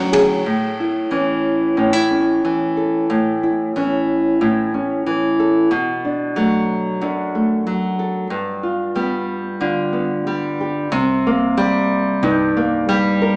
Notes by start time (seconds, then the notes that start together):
Already playing: D2 A2 D3 F#3 C#4 E4
0.13 G#4, kick, ride
0.46 A2
0.80 E4
1.11 E3 C#4
1.77 A2 C#4
1.93 E4
2.11 C#4
2.45 E3
2.77 A4
3.10 A2
3.43 E4
3.76 E3 C#4
4.41 A2 E4
4.74 C#4
5.06 E3
5.40 A4
5.71 B2
6.05 D4
6.36 F#3 A3
7.01 F#2 D4
7.35 A3
7.67 F#3
7.99 A4
8.30 G2
8.63 F4
8.96 G3 B3
9.61 D3 F4
9.93 B3
10.27 G3
10.61 G4
10.92 C2 C3
11.27 A#3
11.57 G3
12.23 C2 G2 D#4
12.57 A#3
12.89 G3
13.21 A#4